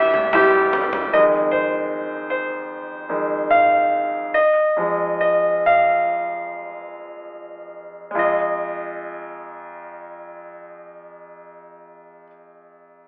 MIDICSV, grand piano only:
0, 0, Header, 1, 2, 480
1, 0, Start_track
1, 0, Key_signature, -4, "minor"
1, 0, Tempo, 789474
1, 682, Time_signature, 4, 2, 24, 8
1, 2125, Tempo, 853485
1, 3085, Tempo, 917431
1, 3565, Tempo, 980392
1, 4045, Tempo, 1054482
1, 4525, Tempo, 1081081
1, 6711, End_track
2, 0, Start_track
2, 0, Title_t, "Grand piano"
2, 0, Program_c, 0, 0
2, 0, Control_c, 0, 64, 127
2, 0, Note_on_c, 0, 52, 66
2, 0, Note_on_c, 0, 55, 70
2, 0, Note_on_c, 0, 64, 64
2, 0, Note_on_c, 0, 67, 80
2, 0, Note_on_c, 0, 72, 82
2, 177, Note_off_c, 0, 55, 0
2, 180, Note_off_c, 0, 64, 0
2, 183, Note_off_c, 0, 67, 0
2, 201, Note_on_c, 0, 55, 77
2, 201, Note_on_c, 0, 76, 81
2, 205, Note_on_c, 0, 64, 72
2, 212, Note_on_c, 0, 67, 90
2, 656, Note_off_c, 0, 55, 0
2, 658, Note_off_c, 0, 64, 0
2, 661, Note_off_c, 0, 67, 0
2, 688, Control_c, 0, 64, 0
2, 688, Note_on_c, 0, 41, 47
2, 689, Note_on_c, 0, 75, 75
2, 690, Note_off_c, 0, 72, 0
2, 690, Note_on_c, 0, 51, 44
2, 692, Note_off_c, 0, 52, 0
2, 694, Note_off_c, 0, 76, 0
2, 696, Note_on_c, 0, 56, 50
2, 742, Note_off_c, 0, 75, 0
2, 783, Control_c, 0, 64, 127
2, 920, Note_on_c, 0, 72, 72
2, 1372, Note_off_c, 0, 41, 0
2, 1373, Note_off_c, 0, 51, 0
2, 1376, Note_off_c, 0, 56, 0
2, 1390, Note_off_c, 0, 72, 0
2, 1399, Note_on_c, 0, 72, 69
2, 1880, Note_on_c, 0, 41, 39
2, 1883, Note_on_c, 0, 56, 42
2, 1884, Note_on_c, 0, 51, 35
2, 2102, Note_off_c, 0, 41, 0
2, 2104, Note_off_c, 0, 51, 0
2, 2104, Note_off_c, 0, 56, 0
2, 2131, Note_on_c, 0, 77, 80
2, 2149, Note_off_c, 0, 72, 0
2, 2602, Note_on_c, 0, 75, 76
2, 2603, Control_c, 0, 64, 0
2, 2613, Note_off_c, 0, 77, 0
2, 2689, Control_c, 0, 64, 127
2, 2839, Note_on_c, 0, 41, 42
2, 2844, Note_on_c, 0, 53, 39
2, 2846, Note_on_c, 0, 56, 50
2, 3079, Note_off_c, 0, 75, 0
2, 3088, Note_on_c, 0, 75, 69
2, 3164, Note_off_c, 0, 41, 0
2, 3167, Note_off_c, 0, 53, 0
2, 3167, Note_off_c, 0, 56, 0
2, 3326, Note_on_c, 0, 77, 76
2, 3330, Note_off_c, 0, 75, 0
2, 4265, Note_off_c, 0, 77, 0
2, 4504, Note_on_c, 0, 56, 51
2, 4523, Note_on_c, 0, 41, 53
2, 4523, Note_on_c, 0, 65, 48
2, 4531, Control_c, 0, 64, 0
2, 4541, Note_on_c, 0, 75, 61
2, 4610, Control_c, 0, 64, 127
2, 6327, Note_off_c, 0, 56, 0
2, 6345, Note_off_c, 0, 41, 0
2, 6345, Note_off_c, 0, 65, 0
2, 6363, Note_off_c, 0, 75, 0
2, 6711, End_track
0, 0, End_of_file